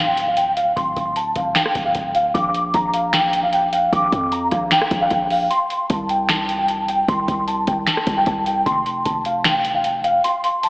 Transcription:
Already playing: D1
0.00 G5
0.17 closed hi-hat
0.28 F5
0.37 G5, closed hi-hat
0.57 F5, closed hi-hat
0.76 D1 C6, kick, closed hi-hat
0.97 D1, kick, closed hi-hat
1.16 A5, closed hi-hat
1.36 D1 F5, kick, closed hi-hat
1.55 G5, finger snap, snare, closed hi-hat
1.66 cross-stick
1.75 D1, kick, closed hi-hat
1.85 F5
1.95 D1 G5, kick, closed hi-hat
2.15 F5, closed hi-hat
2.34 A#1 D6, kick, closed hi-hat
2.54 closed hi-hat
2.74 A#1 A#5, kick, closed hi-hat
2.94 F5, closed hi-hat
3.13 G5, finger snap, snare, closed hi-hat
3.33 closed hi-hat
3.43 F5
3.53 G5, closed hi-hat
3.72 F5, closed hi-hat
3.93 A#1 D6, kick, closed hi-hat
4.12 F2, kick, closed hi-hat
4.32 A#5, closed hi-hat
4.51 A#1 F5, kick, cross-stick, closed hi-hat
4.71 G5, finger snap, snare, closed hi-hat
4.82 cross-stick
4.91 A#1, kick, closed hi-hat
5.01 F5
5.10 A#1 G5, kick, closed hi-hat
5.30 F5, open hi-hat
5.50 C6, closed hi-hat
5.70 closed hi-hat
5.90 C2 A5, kick, closed hi-hat
6.09 G5, closed hi-hat
6.29 A5, finger snap, snare, closed hi-hat
6.49 closed hi-hat
6.59 G5
6.68 A5, closed hi-hat
6.88 G5, closed hi-hat
7.08 C2 C6, kick, closed hi-hat
7.28 C2, kick, closed hi-hat
7.48 A5, closed hi-hat
7.67 C2 G5, kick, closed hi-hat
7.87 A5, finger snap, snare, closed hi-hat
7.97 cross-stick
8.07 C2, kick, closed hi-hat
8.17 G5
8.26 C2 A5, kick, closed hi-hat
8.46 G5, closed hi-hat
8.66 F1 C6, kick, closed hi-hat
8.86 closed hi-hat
9.05 F1 A5, kick, closed hi-hat
9.25 F5, closed hi-hat
9.44 G5, finger snap, snare, closed hi-hat
9.65 closed hi-hat
9.75 F5
9.84 G5, closed hi-hat
10.04 F5, closed hi-hat
10.24 C6, closed hi-hat
10.44 closed hi-hat
10.63 A5, closed hi-hat

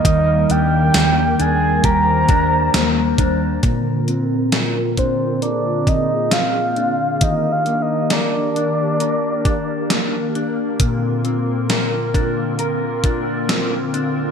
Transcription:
Already playing: G3 A#3 G4
0.05 D#2 D#3 A#4 D#5, kick, closed hi-hat
0.50 D#2 D4 G5, closed hi-hat
0.94 D#2 A#3, snare, closed hi-hat, tambourine
1.39 D#2 D4 G#5, closed hi-hat
1.83 D#2 G4 C5 A#5, kick, closed hi-hat
2.28 D#2 D4, kick, closed hi-hat
2.74 D#2 A#3, snare, closed hi-hat, tambourine
3.18 D#2 D4, kick, closed hi-hat
3.62 A#2 D3 A#3 C4 F4 A#4, kick, closed hi-hat
4.08 C4, closed hi-hat
4.52 A#4, snare, closed hi-hat
4.97 D4 C5, kick, closed hi-hat
5.42 G#4 A#4 D5, closed hi-hat
5.87 D#5, kick, closed hi-hat
6.31 C4 F5, snare, closed hi-hat
6.76 D4, closed hi-hat
7.21 D#3 D4 G4 A#4 D#5, kick, closed hi-hat
7.52 F5
7.66 A#3, closed hi-hat
7.82 D#5
8.10 A#4 D5, snare, closed hi-hat
8.56 D4, closed hi-hat
9.00 A#4, closed hi-hat
9.45 D4, kick, closed hi-hat
9.90 A#3, snare, closed hi-hat
10.35 D4, closed hi-hat
10.80 A#2 D3 C4 F4, kick, closed hi-hat
11.25 C4, closed hi-hat
11.69 A#4, snare, closed hi-hat
12.14 D4, kick, closed hi-hat
12.59 A#4, closed hi-hat
13.04 D4, kick, closed hi-hat
13.49 C4, snare, closed hi-hat
13.93 D4, closed hi-hat

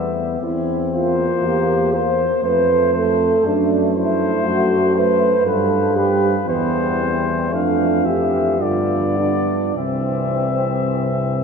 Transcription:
Already playing: E2 G3 B3 E5
0.42 E2 C4 E4
0.92 A#3 F4 C5
1.42 E2 A#3 G4
1.93 A#3 C5
2.42 F2 A3 B4 C5
2.94 A3 A4 C5
3.44 F#2 D4
3.94 A3 E4 C5
4.45 F#2 F#4
4.94 A3 B4 C5
5.45 G2 F3 G3 A4 B4
5.95 G3 G4 B4
6.46 E2 E3 G3 B3 C5
6.99 C4
7.52 F2 A3 D4 F5
8.05 G4 E5
8.60 G2 D3 B3 F4 D5
9.17 D4
9.75 C2 E3 C4 E5

